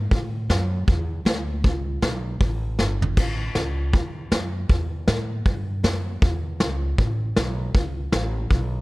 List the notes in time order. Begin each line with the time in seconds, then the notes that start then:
0.11 A2, kick, open hi-hat
0.49 F#2, snare
0.88 E2, kick, open hi-hat
1.25 D2, snare, open hi-hat
1.64 C#2, kick, open hi-hat
2.02 B1, snare, open hi-hat
2.41 A1, kick, open hi-hat
2.79 G1, snare
3.02 floor tom
3.17 A1, kick, crash
3.55 C#2, snare, open hi-hat
3.93 E2, kick, open hi-hat
4.32 F#2, snare, open hi-hat
4.69 E2, kick, open hi-hat
5.08 A2, snare, open hi-hat
5.45 G2, kick, open hi-hat
5.83 F#2, snare, open hi-hat
6.22 E2, kick, open hi-hat
6.60 C#2, snare
6.98 A1, kick, open hi-hat
7.36 B1, snare, open hi-hat
7.75 C#2, kick, open hi-hat
8.12 A1, snare, open hi-hat
8.50 B1, kick, open hi-hat